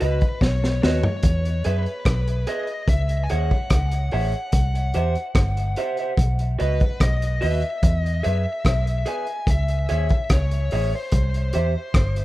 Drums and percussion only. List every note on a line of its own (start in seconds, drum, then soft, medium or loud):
0.01 closed hi-hat medium
0.21 kick medium
0.21 closed hi-hat soft
0.41 kick loud
0.41 snare medium
0.64 snare medium
0.83 snare medium
1.03 floor tom medium
1.23 kick loud
1.23 closed hi-hat loud
1.45 closed hi-hat soft
1.64 closed hi-hat medium
1.86 closed hi-hat soft
2.05 kick loud
2.05 cross-stick loud
2.05 closed hi-hat medium
2.28 closed hi-hat soft
2.47 closed hi-hat medium
2.67 closed hi-hat soft
2.88 kick loud
2.88 closed hi-hat medium
3.09 closed hi-hat soft
3.30 closed hi-hat medium
3.51 kick medium
3.70 kick loud
3.70 cross-stick loud
3.70 closed hi-hat loud
3.91 closed hi-hat soft
4.11 open hi-hat medium
4.32 closed hi-hat soft
4.52 kick loud
4.52 closed hi-hat loud
4.75 closed hi-hat soft
4.94 closed hi-hat medium
5.15 closed hi-hat soft
5.35 kick loud
5.35 cross-stick loud
5.35 closed hi-hat medium
5.57 closed hi-hat soft
5.76 closed hi-hat medium
5.97 closed hi-hat soft
6.17 kick loud
6.17 closed hi-hat medium
6.39 closed hi-hat soft
6.60 closed hi-hat medium
6.80 kick medium
6.80 closed hi-hat soft
7.00 kick loud
7.00 cross-stick loud
7.00 closed hi-hat medium
7.22 closed hi-hat medium
7.42 open hi-hat medium
7.62 closed hi-hat soft
7.83 kick loud
7.83 closed hi-hat medium
8.06 closed hi-hat soft
8.24 closed hi-hat medium
8.65 kick loud
8.65 cross-stick loud
8.65 closed hi-hat medium
8.87 closed hi-hat soft
9.06 closed hi-hat medium
9.27 closed hi-hat soft
9.47 kick loud
9.47 closed hi-hat medium
9.68 closed hi-hat soft
9.89 closed hi-hat medium
10.09 kick medium
10.09 closed hi-hat soft
10.30 kick loud
10.30 cross-stick loud
10.30 closed hi-hat medium
10.51 closed hi-hat soft
10.71 open hi-hat medium
11.12 kick loud
11.12 closed hi-hat medium
11.34 closed hi-hat soft
11.53 closed hi-hat medium
11.94 kick loud
11.94 cross-stick loud
11.94 closed hi-hat medium
12.16 closed hi-hat soft